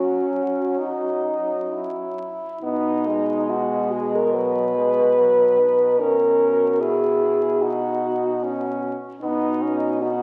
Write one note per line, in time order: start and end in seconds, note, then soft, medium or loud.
0.00 2.29 F#3 medium
0.00 0.80 C#4 medium
0.00 2.29 C#4 medium
0.00 1.67 F#4 medium
0.78 1.72 D#4 medium
1.72 2.62 E4 medium
2.62 5.95 B2 medium
2.62 3.08 B3 medium
2.62 3.52 D#4 medium
2.62 3.47 D#5 medium
3.07 4.36 G#3 medium
3.50 3.94 F#4 medium
3.50 4.34 D#5 medium
3.92 4.16 G#4 medium
4.15 4.33 A#4 medium
4.34 4.76 F#3 soft
4.34 6.00 B4 loud
4.34 6.01 D#5 medium
4.76 5.19 G#3 medium
5.18 5.60 F#3 medium
5.59 6.01 D#4 medium
5.99 8.91 B2 medium
5.99 6.82 C#4 medium
5.99 7.61 F#4 medium
5.99 6.82 A#4 medium
6.81 7.63 E4 medium
6.81 7.63 G#4 medium
7.62 8.44 D#4 medium
7.62 8.92 F#4 medium
7.62 8.82 F#4 medium
8.43 8.96 C#4 medium
9.22 10.22 B2 medium
9.22 9.64 B3 medium
9.22 9.98 D#4 medium
9.22 9.98 F#4 medium
9.62 10.04 C#4 medium
10.02 10.22 D#4 medium
10.02 10.22 F#4 medium